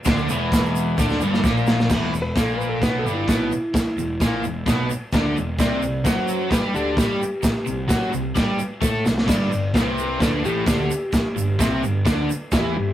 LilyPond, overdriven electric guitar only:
\new Staff \with { instrumentName = "Overdriven electric guitar" } { \clef bass \time 4/4 \key e \minor \tempo 4 = 130 <d d'>8 <e, e>4. <d d'>8 <g, g>8 <ais, ais>4 | <e, e>8 e,8 <ais, ais>4 <b, b>8 <g, g>8 <b, b>8 r8 | r8 e,8 <ais, ais>8 e,8 <b, b>8 r8 <d d'>8 e,8 | <c c'>8 c8 <fis fis'>4 <g g'>8 <d d'>8 <g g'>8 r8 |
r8 c8 <fis fis'>8 c8 <g g'>8 r8 <a a'>8 c8 | <g, g>8 g,8 <c c'>4 <d d'>8 <a, a>8 <d d'>8 r8 | r8 g,8 <c c'>8 g,8 <d d'>8 r8 <e e'>8 g,8 | }